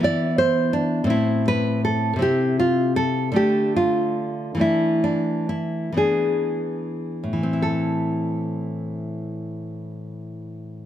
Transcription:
0.00 1.04 E3 medium
0.00 1.06 B3 soft
0.00 1.06 E4 medium
0.04 0.38 D5 medium
0.38 0.73 C5 loud
0.73 1.09 D4 medium
1.04 2.16 A2 medium
1.04 2.17 C4 medium
1.10 1.46 E4 medium
1.48 1.84 B4 loud
1.85 2.21 A4 medium
2.16 3.31 C3 medium
2.16 3.33 C4 medium
2.20 3.33 E4 soft
2.20 2.59 G4 medium
2.60 2.96 F4 medium
2.96 3.35 A4 medium
3.32 4.54 D3 medium
3.32 4.55 A3 medium
3.32 4.56 D4 soft
3.36 3.75 G4 medium
3.76 4.56 F4 medium
4.55 5.91 E3 soft
4.55 5.93 A3 soft
4.59 5.03 D4 soft
4.59 5.02 E4 medium
5.04 5.48 D4 medium
5.49 5.96 E4 medium
5.92 7.32 E3 medium
5.92 7.43 B3 soft
5.97 7.53 D4 soft
5.97 7.58 G#4 medium
7.24 10.86 A2 soft
7.33 10.86 E3 soft
7.43 10.86 C4 soft
7.53 10.86 E4 soft
7.62 10.86 A4 medium

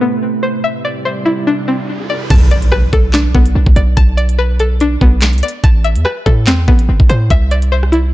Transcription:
0.00 0.62 A2 medium
0.00 0.62 C3 medium
0.00 0.62 A3 medium
0.00 0.64 B3 medium
0.00 0.64 C4 medium
0.00 0.64 A4 medium
0.00 0.62 B4 medium
0.00 0.63 B4 medium
0.00 0.43 E5 medium
0.00 0.22 A5 loud
0.43 0.64 C5 medium
0.64 2.29 C3 medium
0.64 2.29 G3 medium
0.64 2.29 E4 medium
0.64 2.29 D5 medium
0.64 1.89 E5 loud
0.64 riser medium
0.85 2.09 D5 medium
1.05 2.30 C5 medium
1.25 2.30 E4 medium
1.47 2.30 D4 medium
1.68 2.30 C4 medium
2.10 2.30 D5 medium
2.30 2.90 B1 loud
2.30 3.55 A5 loud
2.30 kick loud
2.30 closed hi-hat medium
2.30 crash loud
2.30 impact medium
2.51 3.75 D5 medium
2.51 closed hi-hat medium
2.62 closed hi-hat medium
2.72 3.97 B4 medium
2.72 cross-stick loud
2.93 3.33 B1 loud
2.93 4.18 A4 medium
2.93 kick loud
2.93 closed hi-hat medium
3.13 4.39 D4 loud
3.13 snare loud
3.13 clap medium
3.13 closed hi-hat medium
3.35 3.55 B1 loud
3.35 4.60 B3 medium
3.35 kick loud
3.46 closed hi-hat medium
3.55 3.66 B1 loud
3.66 3.76 B1 loud
3.66 kick medium
3.76 3.96 B1 loud
3.76 4.16 D5 medium
3.76 closed hi-hat medium
3.97 4.97 B1 loud
3.97 5.22 A5 loud
3.97 kick loud
3.97 closed hi-hat medium
4.17 5.42 D5 medium
4.17 closed hi-hat medium
4.29 closed hi-hat medium
4.39 5.64 B4 medium
4.60 5.64 A4 medium
4.60 closed hi-hat medium
4.80 5.64 D4 loud
4.80 closed hi-hat medium
5.01 5.35 B1 loud
5.01 5.64 B3 medium
5.01 kick loud
5.22 snare loud
5.22 clap medium
5.33 5.42 C2 loud
5.33 closed hi-hat soft
5.38 closed hi-hat medium
5.43 5.64 D5 medium
5.43 closed hi-hat medium
5.48 closed hi-hat medium
5.64 5.97 A1 loud
5.64 6.89 A5 loud
5.64 kick loud
5.64 closed hi-hat medium
5.84 7.09 E5 medium
5.84 closed hi-hat medium
5.96 6.05 E2 loud
5.96 closed hi-hat medium
6.05 7.30 B4 loud
6.05 cross-stick loud
6.26 6.49 A2 loud
6.26 7.30 A4 medium
6.26 kick loud
6.26 closed hi-hat medium
6.47 6.67 E2 loud
6.47 7.30 C4 medium
6.47 snare loud
6.47 clap medium
6.47 closed hi-hat medium
6.68 6.88 A1 loud
6.68 7.30 B3 medium
6.68 kick medium
6.79 closed hi-hat medium
6.89 6.99 G1 loud
7.00 7.09 A1 loud
7.00 kick medium
7.09 7.30 A2 loud
7.09 7.30 C5 medium
7.09 closed hi-hat medium
7.30 8.14 C2 loud
7.30 8.14 E5 loud
7.30 kick loud
7.30 closed hi-hat medium
7.51 8.14 D5 medium
7.51 closed hi-hat medium
7.62 closed hi-hat medium
7.72 8.14 C5 medium
7.83 cross-stick medium
7.92 8.14 E4 medium
7.92 closed hi-hat medium

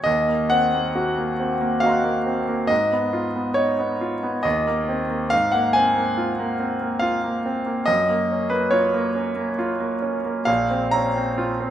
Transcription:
0.04 2.66 D#2 medium
0.04 0.51 D#5 medium
0.28 0.65 A#3 soft
0.50 0.88 C4 soft
0.50 1.82 F#5 medium
0.74 1.10 A#3 soft
0.95 1.31 F#4 soft
1.18 1.53 A#3 soft
1.40 1.74 C4 soft
1.61 1.96 A#3 soft
1.80 2.17 F#4 soft
1.80 2.66 D#5 soft
1.80 2.69 F5 medium
1.86 2.67 A#5 soft
1.86 2.69 C6 soft
1.92 2.70 F#6 soft
2.04 2.39 A#3 soft
2.26 2.61 C4 soft
2.48 2.70 A#3 soft
2.67 4.41 G#2 medium
2.67 3.56 D#5 medium
2.92 3.27 B3 soft
3.13 3.49 F4 soft
3.36 3.71 B3 soft
3.54 3.92 D#4 soft
3.54 4.43 C#5 medium
3.79 4.14 B3 soft
4.01 4.36 F4 soft
4.23 4.45 B3 soft
4.43 5.30 D#2 medium
4.43 5.31 D#5 medium
4.67 5.02 A#3 soft
4.88 5.23 C4 soft
5.10 5.32 A#3 soft
5.30 7.85 G#2 medium
5.30 5.53 F5 medium
5.52 5.88 A#3 soft
5.52 5.74 F#5 medium
5.73 6.10 C4 soft
5.73 7.03 G#5 medium
5.96 6.31 A#3 soft
6.18 6.52 F4 soft
6.40 6.74 A#3 soft
6.60 6.95 C4 soft
6.81 7.16 A#3 soft
6.99 7.37 F4 soft
6.99 7.87 F5 medium
7.24 7.59 A#3 soft
7.46 7.80 C4 soft
7.66 7.88 A#3 soft
7.86 10.43 F#2 medium
7.86 8.51 D#5 medium
8.09 8.44 A#3 soft
8.31 8.65 C#4 soft
8.50 8.86 A#3 soft
8.50 8.72 B4 medium
8.71 9.07 F4 soft
8.71 9.57 C#5 medium
8.94 9.29 A#3 soft
9.15 9.50 C#4 soft
9.36 9.71 A#3 soft
9.59 9.93 F4 soft
9.80 10.16 A#3 soft
10.02 10.38 C#4 soft
10.25 10.48 A#3 soft
10.45 11.70 A#1 medium
10.45 10.93 F5 medium
10.71 11.07 C4 soft
10.91 11.29 C#4 soft
10.91 11.70 A#5 medium
11.16 11.51 C4 soft
11.38 11.70 F4 medium
11.60 11.70 C4 soft

